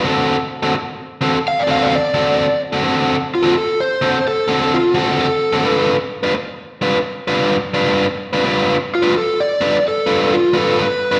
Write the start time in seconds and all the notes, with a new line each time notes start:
0.04 D3 C4 F#4 A4
0.63 D3 C4 F#4 A4
0.74 muted overdriven electric guitar stroke
1.21 D3 C4 F#4 A4
1.48 F5
1.59 D5
1.67 D3 C4 F#4 A4 F5
1.83 D5
1.96 D5
2.14 D3 C4 F#4 A4
2.73 D3 C4 F#4 A4
2.83 D3 C4 F#4 A4
3.35 F4
3.43 D3 C4 F#4 A4
3.54 A4, muted overdriven electric guitar stroke
3.80 C5
4.01 D3 C4 F#4 A4
4.28 A4
4.48 D3 C4 F#4 A4
4.74 F4
4.94 D3 C4 F#4 A4
5.21 A4
5.53 D3 C4 F#4 A4
5.64 G3 D4 F4 B4
6.23 G3 D4 F4 B4
6.34 muted overdriven electric guitar stroke
6.81 G3 D4 F4 B4
7.28 G3 D4 F4 B4
7.74 G3 D4 F4 B4
8.33 G3 D4 F4 B4
8.44 G3 D4 F4 B4
8.95 F4
9.03 G3 D4 F4 B4
9.14 A4, muted overdriven electric guitar stroke
9.40 D5
9.61 G3 D4 F4 B4
9.88 A4
10.07 G3 D4 F4 B4
10.34 F4
10.53 G3 D4 F4 A4 B4
10.79 B4
11.12 G3 D4 F4 B4